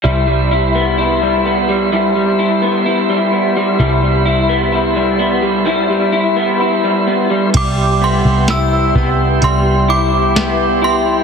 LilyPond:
<<
  \new Staff \with { instrumentName = "Synth bell" } { \time 4/4 \key c \major \tempo 4 = 64 r1 | r1 | d'''8 c'''8 e'''4 c'''8 d'''4 c'''8 | }
  \new Staff \with { instrumentName = "Tonewheel organ" } { \time 4/4 \key c \major <g' e'' b'' c'''>1~ | <g' e'' b'' c'''>1 | <g' e'' g'' c'''>1 | }
  \new Staff \with { instrumentName = "Clean electric guitar" } { \time 4/4 \key c \major <g e'>16 g16 e'16 b16 e'16 g16 b16 g16 <g e'>16 g16 e'16 b16 e'16 g16 b16 g16 | <g e'>16 g16 e'16 b16 e'16 g16 b16 g16 <g e'>16 g16 e'16 b16 e'16 g16 b16 g16 | g8 b8 e'8 b8 g8 e'8 b8 e'8 | }
  \new Staff \with { instrumentName = "Picked electric bass" } { \clef bass \time 4/4 \key c \major c,1 | c,1 | c,8. c,8. c,8 c,2 | }
  \new DrumStaff \with { instrumentName = "Drums" } \drummode { \time 4/4 r4 r4 r4 r4 | r4 r4 r4 r4 | <cymc hh bd>4 <hh sn>8 bd8 hh4 <hh sn>4 | }
>>